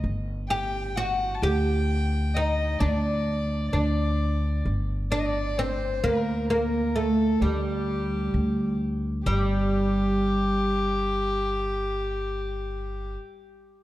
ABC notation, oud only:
X:1
M:10/8
L:1/8
Q:1/4=65
K:none
V:1 name="Oud"
z G ^F G2 _E D2 D2 | z D C _B, B, A, G,3 z | G,8- G,2 |]